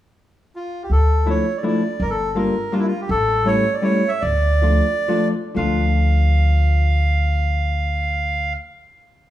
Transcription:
0.56 F4
0.83 G4
0.90 D2 A4
1.26 F3 A3 D4 E4 C#5
1.57 D5
1.63 F3 A3 D4 E4 D5
2.00 G1 A#4
2.10 A4
2.35 G3 A#3 D4 F4 A#4
2.72 G3 A#3 D4 F4
2.79 E4
2.87 F4
3.01 G4
3.09 A1 A4
3.45 G3 A3 C#4 E4 C#5
3.74 D5
3.82 G3 A3 C#4 E4 C#5
4.08 E5
4.21 D2 D5
4.62 F3 A3 D4 F4
5.08 F3 A3 D4 F4
5.55 D2 F3 A3 D4 F4 F5

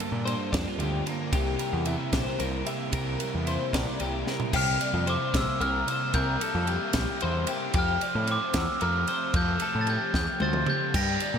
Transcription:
Already playing: G2 D3 A#3 D4
0.00 G3 A#3 A4, ride
0.12 A#2
0.25 D3 G3 A#3 D4 C5, ride
0.52 F2 A#3 D4 D5, kick, snare, ride
0.56 G3
0.68 F4
0.78 D2 D3 G3 A#3 D4 G4, ride
0.83 C5
1.06 G3 A#3 D4 A#4, ride
1.32 C2 C3 G3 A#3 E4 G4, kick, ride
1.58 G3 A#3 E4 A#4, ride
1.73 E2
1.85 C3 G3 A#3 E4 E5, ride
1.89 E4
2.12 A#1 G3 A#3 E4 G4 C5, kick, snare, ride
2.26 A#4
2.38 C2 C3 G3 A#3 E4 A#4, ride
2.65 A#3 E4 G4 E5, ride
2.70 G3
2.91 C2 C3 G3 A#3 G4 A#4, kick, ride
2.95 E4
3.18 G3 A#3 E4 A#4, ride
3.35 E2
3.45 C3 G3 E4 C5, ride
3.49 A#3 E4
3.73 A#1 A#3 E4 A#4 D5, kick, snare, ride
3.77 G3
3.99 C2 C3 G3 A#3 E4 G4 A#4, ride
4.24 G3 A#3 E4 G4 A#4, snare
4.40 floor tom
4.52 C2 C3 G3 A#3 E4 G4, kick, crash
4.56 F6
4.79 G3 A#3 E4 D5, ride
4.94 F2
5.06 C3 G3 A#3 E4 C5 D6, ride
5.31 A#1 A#3 E4, kick, snare, ride
5.35 G3 E6
5.58 C2 C3 G3 A#3 E4 A#4 F6, ride
5.86 G3 A#3 E4 C5, ride
6.13 C2 C3 G3 A#3 E4 A#4 G6, kick, ride
6.39 G3 A#3 E4 A4, ride
6.55 F2
6.67 C3 G3 A#3 E4 G4, ride
6.93 A#1 G3 A#3 E4, kick, snare, ride
7.20 E2 C3 G3 A#3 C5, ride
7.25 E4
7.47 G3 A#3 E4 G4, ride
7.73 F2 C3 F3 A3 C4 G4, kick, ride
7.79 F6
8.00 A3 C4 D5, ride
8.04 F3
8.15 A2
8.25 C3 F3 A3, ride
8.29 C4 C5 D6
8.53 E2 F3 A3 C4, kick, snare, ride
8.57 E6
8.80 F2 C3 F3 A3 C4 A#4 F6, ride
9.07 F3 A3 C4 C5, ride
9.34 F2 C3 F3 A3 C4 A4 G6, kick, ride
9.59 F3 A3 C4 A4, ride
9.75 A2
9.81 A6
9.86 C3 F3 A3 C4 G4 G6, ride
10.13 E2 F3 A3 C4 G6, kick, snare
10.40 D2 C3 F3 A3 C4 C5 A6, high tom
10.53 mid tom
10.67 A3 C4 G4 G6, mid tom
10.71 F3
10.94 G2 D3 G3 A#3 D4 G4 A#6, kick, ride, crash
11.20 A#3 D4 D5, ride
11.24 G3
11.34 A#2

